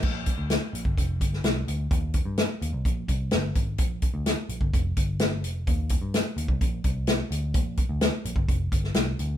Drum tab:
CC |x---------------|----------------|----------------|----------------|
HH |--x-x-x-x-x-x-x-|x-x-x-x-x-x-x-x-|x-x-x-x-x-x-x-x-|x-x-x-x-x-x-x-x-|
SD |----o------oo---|----o-------o---|----o-------o---|----o-------o---|
BD |o-o----oo-o-----|o-o-----o-o---o-|o-o----oo-o-----|o-o----oo-o-----|

CC |----------------|
HH |x-x-x-x-x-x-x-x-|
SD |----o------oo---|
BD |o-o----oo-o-----|